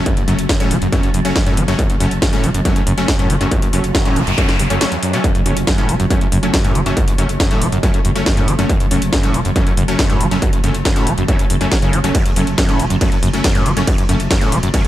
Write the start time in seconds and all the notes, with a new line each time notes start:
Already playing: F#3
0.06 F#2, kick, closed hi-hat
0.17 F#1 F#2, closed hi-hat
0.28 F#1 F#2 F#3 A3 C#4, open hi-hat
0.39 F#1, closed hi-hat
0.49 F#2, kick, snare, closed hi-hat
0.60 A2 F#3 A3 C#4, closed hi-hat
0.71 E1 F#3, open hi-hat
0.82 F#1 F#2, closed hi-hat
0.92 F#2 F#3 A3 C#4, kick, closed hi-hat
1.03 F#2, closed hi-hat
1.14 F#1 F#2, open hi-hat
1.25 F#1 F#3 A3 C#4, closed hi-hat
1.36 F#2, kick, snare, closed hi-hat
1.46 F#2 A2 F#3 A3 C#4, closed hi-hat
1.57 F#1 F#3, open hi-hat
1.68 F#1 F#2 F#3 A3 C#4, closed hi-hat
1.79 F#2, kick, closed hi-hat
1.90 F#1 F#2, closed hi-hat
2.00 F#1 F#2 F#3 A3 C#4, open hi-hat
2.11 F#1, closed hi-hat
2.22 F#2, kick, snare, closed hi-hat
2.33 A2 F#3 A3 C#4, closed hi-hat
2.44 E1 F#3, open hi-hat
2.54 F#1 F#2, closed hi-hat
2.65 F#2 F#3 A3 C#4, kick, closed hi-hat
2.76 F#2, closed hi-hat
2.87 F#1 F#2, open hi-hat
2.98 F#1 F#3 A3 C#4, closed hi-hat
3.08 F#2, kick, snare, closed hi-hat
3.19 F#2 A2 F#3 A3 C#4, closed hi-hat
3.30 F#1 F#3, open hi-hat
3.41 F#1 F#2 F#3 A3 C#4, closed hi-hat
3.51 F#2, kick, closed hi-hat, noise sweep
3.62 F#1 F#2, closed hi-hat
3.73 F#1 F#2 F#3 A3 C#4, open hi-hat
3.84 F#1, closed hi-hat
3.95 F#2, kick, snare, closed hi-hat
4.05 A2 F#3 A3 C#4, closed hi-hat
4.16 E1 F#3, open hi-hat
4.27 F#1 F#2, closed hi-hat
4.38 F#2 F#3 A3 C#4, kick, closed hi-hat
4.49 F#2, snare, closed hi-hat
4.59 F#1 A2, open hi-hat
4.70 F#1 F#2 F#3 A3 C#4, closed hi-hat
4.81 F#1 F#3 A3 C#4, snare, closed hi-hat
4.92 E2, closed hi-hat
5.03 F#2, open hi-hat
5.13 C#3 F#3 A3 C#4, closed hi-hat
5.24 F#2 F#3, kick, closed hi-hat
5.35 F#1 F#2, closed hi-hat
5.46 F#1 F#2 F#3 A3 C#4, open hi-hat
5.57 F#1, closed hi-hat
5.67 F#2, kick, snare, closed hi-hat
5.78 A2 F#3 A3 C#4, closed hi-hat
5.89 E1 F#3, open hi-hat
6.00 F#1 F#2, closed hi-hat
6.10 F#2 F#3 A3 C#4, kick, closed hi-hat
6.21 F#2, closed hi-hat
6.32 F#1 F#2, open hi-hat
6.43 F#1 F#3 A3 C#4, closed hi-hat
6.54 F#2, kick, snare, closed hi-hat
6.64 F#2 A2 F#3 A3 C#4, closed hi-hat
6.75 F#1 F#3, open hi-hat
6.86 F#1 F#2 F#3 A3 C#4, closed hi-hat
6.97 F#2, kick, closed hi-hat
7.08 F#1 F#2, closed hi-hat
7.18 F#1 F#2 F#3 A3 C#4, open hi-hat
7.29 F#1, closed hi-hat
7.40 F#2, kick, snare, closed hi-hat
7.51 A2 F#3 A3 C#4, closed hi-hat
7.61 E1 F#3, open hi-hat
7.72 F#1 F#2, closed hi-hat
7.83 F#2 F#3 A3 C#4, kick, closed hi-hat
7.94 F#2, closed hi-hat
8.05 F#1 F#2, open hi-hat
8.15 F#1 F#3 A3 C#4, closed hi-hat
8.26 F#2, kick, snare, closed hi-hat
8.37 F#2 A2 F#3 A3 C#4, closed hi-hat
8.48 F#1 F#3, open hi-hat
8.59 F#1 F#2 F#3 A3 C#4, closed hi-hat
8.69 F#2, kick, closed hi-hat
8.80 F#1 F#2, closed hi-hat
8.91 F#1 F#2 F#3 A3 C#4, open hi-hat
9.02 F#1, closed hi-hat
9.13 F#2, kick, snare, closed hi-hat
9.23 A2 F#3 A3 C#4, closed hi-hat
9.34 E1 F#3, open hi-hat
9.45 F#1 F#2, closed hi-hat
9.56 F#2 F#3 A3 C#4, kick, closed hi-hat
9.67 F#2, closed hi-hat
9.77 F#1 F#2, open hi-hat
9.88 F#1 F#3 A3 C#4, closed hi-hat
9.99 F#2, kick, snare, closed hi-hat
10.10 F#2 A2 F#3 A3 C#4, closed hi-hat
10.20 F#1 F#3, open hi-hat
10.31 F#1 F#2 F#3 A3 C#4, closed hi-hat
10.42 F#2, kick, closed hi-hat
10.53 F#1 F#2, closed hi-hat
10.64 F#1 F#2 F#3 A3 C#4, open hi-hat
10.75 F#1, closed hi-hat
10.85 F#2, kick, snare, closed hi-hat
10.96 A2 F#3 A3 C#4, closed hi-hat
11.07 E1 F#3, open hi-hat
11.18 F#1 F#2, closed hi-hat
11.28 F#2 F#3 A3 C#4, kick, closed hi-hat
11.39 F#2, closed hi-hat
11.50 F#1 F#2, open hi-hat
11.61 F#1 F#2 F#3 A3 C#4, closed hi-hat
11.72 F#3, kick, snare, closed hi-hat
11.82 F#2 C#3 F#3 A3 C#4, closed hi-hat
11.93 F#1 F#3, open hi-hat
12.04 F#1 F#3 A3 C#4, closed hi-hat
12.15 F#2, kick, closed hi-hat, ride
12.26 F#1 F#2, closed hi-hat
12.36 F#1 F#2 F#3 A3 C#4, open hi-hat
12.47 F#1, closed hi-hat
12.58 F#2, kick, snare, closed hi-hat, ride
12.69 A2 F#3 A3 C#4, closed hi-hat
12.79 E1 F#3, open hi-hat
12.90 F#1 F#2, closed hi-hat
13.01 F#2 F#3 A3 C#4, kick, closed hi-hat, ride
13.12 F#2, closed hi-hat
13.23 F#1 F#2, open hi-hat
13.33 F#1 F#3 A3 C#4, closed hi-hat
13.44 F#2, kick, snare, closed hi-hat, ride
13.55 F#2 A2 F#3 A3 C#4, closed hi-hat
13.66 F#1 F#3, open hi-hat
13.77 F#1 F#2 F#3 A3 C#4, closed hi-hat
13.87 F#2, kick, closed hi-hat, ride
13.98 F#1 F#2, closed hi-hat
14.09 F#1 F#2 F#3 A3 C#4, open hi-hat
14.20 F#1, closed hi-hat
14.31 F#2, kick, snare, closed hi-hat, ride
14.41 A2 F#3 A3 C#4, closed hi-hat
14.52 E1 F#3, open hi-hat
14.63 F#1 F#2, closed hi-hat
14.74 F#2 F#3 A3 C#4, kick, closed hi-hat, ride
14.85 F#2, closed hi-hat